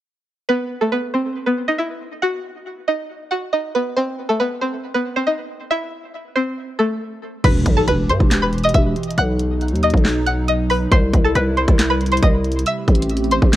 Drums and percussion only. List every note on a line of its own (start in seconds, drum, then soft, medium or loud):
7.44 kick loud
7.44 closed hi-hat medium
7.44 crash loud
7.66 kick medium
7.66 closed hi-hat medium
7.88 closed hi-hat medium
8.09 closed hi-hat soft
8.20 kick loud
8.20 closed hi-hat medium
8.31 snare loud
8.31 clap loud
8.31 closed hi-hat medium
8.53 closed hi-hat soft
8.58 closed hi-hat medium
8.64 closed hi-hat medium
8.69 closed hi-hat medium
8.74 kick loud
8.74 closed hi-hat medium
8.96 closed hi-hat medium
9.04 closed hi-hat medium
9.11 closed hi-hat medium
9.18 closed hi-hat medium
9.40 closed hi-hat medium
9.61 closed hi-hat soft
9.69 closed hi-hat medium
9.76 closed hi-hat medium
9.83 closed hi-hat medium
9.90 kick loud
9.90 closed hi-hat medium
9.98 closed hi-hat medium
10.05 snare loud
10.05 clap loud
10.05 closed hi-hat medium
10.27 closed hi-hat medium
10.48 closed hi-hat medium
10.70 open hi-hat medium
10.92 kick loud
10.92 closed hi-hat medium
11.14 kick medium
11.14 closed hi-hat medium
11.35 closed hi-hat medium
11.57 closed hi-hat soft
11.68 kick loud
11.68 closed hi-hat medium
11.79 snare loud
11.79 clap loud
11.79 closed hi-hat medium
12.01 closed hi-hat soft
12.06 closed hi-hat medium
12.12 closed hi-hat medium
12.17 closed hi-hat medium
12.22 kick loud
12.22 closed hi-hat medium
12.44 closed hi-hat medium
12.51 closed hi-hat medium
12.59 closed hi-hat medium
12.66 closed hi-hat medium
12.88 kick medium
12.88 closed hi-hat soft
12.95 closed hi-hat medium
13.02 closed hi-hat medium
13.09 closed hi-hat medium
13.17 closed hi-hat medium
13.24 closed hi-hat soft
13.31 closed hi-hat medium
13.42 kick loud
13.53 snare loud
13.53 clap loud
13.53 closed hi-hat medium